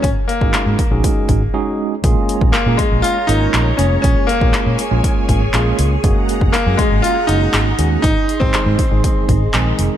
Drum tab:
HH |x-x-x-x-x-x-----|x-x-x-x-x-x-x-x-|x-x-x-x-x-x-x-x-|x-x-x-x-x-x-x-x-|
CP |----x-----------|----x-------x---|----x-------x---|----x-------x---|
BD |o--o--o-o-o-----|o--o--o---------|o--o----o-o-----|o--o--o---------|

HH |x-x-x-x-x-x-x-x-|
CP |----x-------x---|
BD |o--o--o-o-o-----|